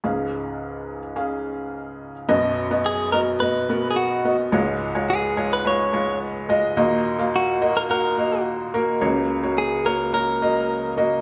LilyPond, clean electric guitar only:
\new Staff \with { instrumentName = "Clean electric guitar" } { \time 4/4 \key cis \mixolydian \tempo 4 = 107 r1 | r4 gis'8 ais'8 b'8.~ b'32 gis'32 fis'8. r16 | r4 gis'8. b'16 cis''4 r4 | r4 fis'8. ais'16 ais'4 r4 |
r4 gis'8 ais'8 ais'4. r8 | }